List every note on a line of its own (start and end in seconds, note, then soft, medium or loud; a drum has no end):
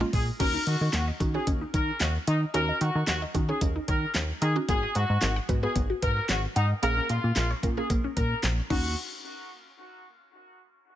0.00 0.29 G#3 medium
0.00 0.29 A#3 medium
0.00 0.29 C#4 medium
0.00 0.29 F4 medium
0.13 0.31 A#2 loud
0.13 0.25 G#4 medium
0.13 kick loud
0.13 open hi-hat medium
0.40 0.57 D#2 loud
0.40 0.96 C#4 medium
0.40 0.48 C#4 loud
0.40 0.96 D#4 medium
0.40 0.96 F#4 medium
0.40 0.62 A#4 loud
0.40 kick loud
0.40 closed hi-hat medium
0.40 crash medium
0.54 0.61 D#4 medium
0.67 0.76 D#3 medium
0.67 0.89 F#4 medium
0.67 closed hi-hat medium
0.81 0.89 D#3 medium
0.93 1.11 D#2 loud
0.93 1.05 F#4 medium
0.93 snare medium
0.93 clap loud
0.93 closed hi-hat medium
1.08 1.15 D#5 medium
1.20 1.38 D#3 loud
1.20 1.30 C#4 medium
1.20 1.30 D#4 medium
1.20 1.30 F#4 medium
1.20 kick medium
1.20 closed hi-hat medium
1.34 2.09 C#4 medium
1.34 2.09 D#4 medium
1.34 2.09 F#4 medium
1.34 1.45 G#4 medium
1.34 1.42 C#5 medium
1.47 1.65 D#2 loud
1.47 1.55 C#4 medium
1.47 kick loud
1.47 closed hi-hat loud
1.61 1.68 D#4 medium
1.74 1.91 D#3 loud
1.74 1.96 A#4 medium
1.74 1.82 C#5 medium
1.74 kick medium
1.74 closed hi-hat medium
2.00 2.18 D#2 loud
2.00 2.12 F#4 medium
2.00 snare medium
2.00 clap loud
2.00 closed hi-hat medium
2.27 2.45 D#3 loud
2.27 2.39 D#4 medium
2.27 2.36 D#5 medium
2.27 closed hi-hat medium
2.54 2.72 D#2 loud
2.54 3.10 C#4 medium
2.54 2.62 C#4 loud
2.54 3.11 D#4 medium
2.54 3.11 F#4 medium
2.54 2.76 A#4 loud
2.54 closed hi-hat medium
2.69 2.76 D#4 medium
2.81 2.90 D#3 loud
2.81 3.03 F#4 medium
2.81 closed hi-hat medium
2.95 3.04 D#3 loud
3.07 3.25 D#2 loud
3.07 3.20 F#4 medium
3.07 snare medium
3.07 clap loud
3.07 closed hi-hat medium
3.22 3.29 D#5 medium
3.34 3.52 D#3 loud
3.34 3.44 C#4 medium
3.34 3.45 D#4 medium
3.34 3.45 F#4 medium
3.34 kick medium
3.34 closed hi-hat medium
3.49 4.23 C#4 medium
3.49 4.23 D#4 medium
3.49 3.59 G#4 medium
3.49 4.24 G#4 medium
3.49 3.56 C#5 medium
3.61 3.79 D#2 loud
3.61 3.70 C#4 medium
3.61 kick medium
3.61 closed hi-hat loud
3.76 3.83 D#4 medium
3.88 4.06 D#3 loud
3.88 4.10 A#4 medium
3.88 3.96 C#5 medium
3.88 kick medium
3.88 closed hi-hat medium
4.14 4.32 D#2 loud
4.14 snare medium
4.14 clap loud
4.14 closed hi-hat medium
4.42 4.59 D#3 loud
4.42 4.53 G#4 medium
4.42 4.50 D#5 medium
4.42 closed hi-hat medium
4.56 4.65 C#4 medium
4.56 4.65 D#4 medium
4.56 4.65 F#4 medium
4.68 4.86 G#1 loud
4.68 5.25 B3 medium
4.68 4.77 B3 medium
4.68 5.25 F#4 medium
4.68 4.90 G#4 loud
4.68 5.25 G#4 medium
4.68 kick loud
4.68 closed hi-hat medium
4.83 4.90 F#4 medium
4.95 5.05 G#2 loud
4.95 5.17 F#4 medium
4.95 closed hi-hat medium
5.10 5.18 G#2 loud
5.21 5.40 G#1 loud
5.21 5.34 F#4 medium
5.21 snare medium
5.21 clap loud
5.21 closed hi-hat medium
5.36 5.43 F#5 medium
5.49 5.66 G#2 loud
5.49 5.59 B3 medium
5.49 5.59 F#4 medium
5.49 5.59 B4 medium
5.49 kick medium
5.49 closed hi-hat medium
5.63 6.38 B3 medium
5.63 6.38 F#4 medium
5.63 5.73 G#4 medium
5.63 6.38 G#4 medium
5.63 5.70 B4 medium
5.76 5.93 G#1 loud
5.76 5.84 B3 medium
5.76 kick loud
5.76 closed hi-hat loud
5.90 5.97 F#4 medium
6.02 6.20 G#2 loud
6.02 6.24 A#4 medium
6.02 6.11 B4 medium
6.02 kick medium
6.02 closed hi-hat medium
6.29 6.47 G#1 loud
6.29 6.41 F#4 medium
6.29 snare medium
6.29 clap loud
6.29 closed hi-hat medium
6.56 6.74 G#2 loud
6.56 6.68 D#4 medium
6.56 6.64 F#5 medium
6.56 closed hi-hat medium
6.83 7.00 A#1 loud
6.83 7.39 A#3 medium
6.83 6.91 A#3 loud
6.83 7.39 C#4 medium
6.83 7.39 G#4 medium
6.83 7.05 A#4 loud
6.83 closed hi-hat medium
6.97 7.04 C#4 medium
7.09 7.19 A#2 loud
7.09 7.32 F4 medium
7.09 closed hi-hat medium
7.24 7.32 A#2 loud
7.36 7.54 A#1 loud
7.36 7.48 F4 medium
7.36 snare loud
7.36 clap loud
7.36 closed hi-hat medium
7.51 7.58 C#5 medium
7.63 7.81 A#2 loud
7.63 7.73 A#3 medium
7.63 7.73 C#4 medium
7.63 7.73 A#4 medium
7.63 kick medium
7.63 closed hi-hat medium
7.77 8.52 A#3 medium
7.77 8.52 C#4 medium
7.77 7.88 G#4 medium
7.77 8.52 G#4 medium
7.77 7.85 A#4 medium
7.90 8.07 A#1 loud
7.90 7.98 A#3 medium
7.90 kick loud
7.90 closed hi-hat loud
8.04 8.11 C#4 medium
8.17 8.34 A#2 loud
8.17 8.25 A#4 medium
8.17 8.39 A#4 medium
8.17 kick medium
8.17 closed hi-hat medium
8.43 8.61 A#1 loud
8.43 snare medium
8.43 clap loud
8.43 closed hi-hat medium
8.70 8.95 D#2 loud
8.70 8.95 C#4 medium
8.70 8.95 D#4 medium
8.70 8.95 F#4 loud
8.70 8.95 F#4 medium
8.70 8.95 F#4 loud
8.70 kick loud
8.70 crash medium